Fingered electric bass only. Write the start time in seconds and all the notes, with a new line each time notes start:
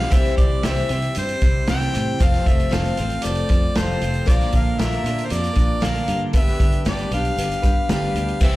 0.12 C2
0.38 C2
0.65 C2
0.90 C3
1.17 G2
1.42 C2
1.70 C2
1.96 A2
2.20 F1
2.46 F1
2.73 F1
3.00 A1
3.25 F1
3.50 F2
3.77 F1
4.02 F1
4.27 A#1
4.54 A#1
4.79 A#1
5.04 A#2
5.31 F2
5.56 A#1
5.82 A#1
6.08 G2
6.33 G1
6.60 G1
6.86 G1
7.11 B1
7.36 G1
7.64 G2
7.89 G1
8.14 D2
8.40 C2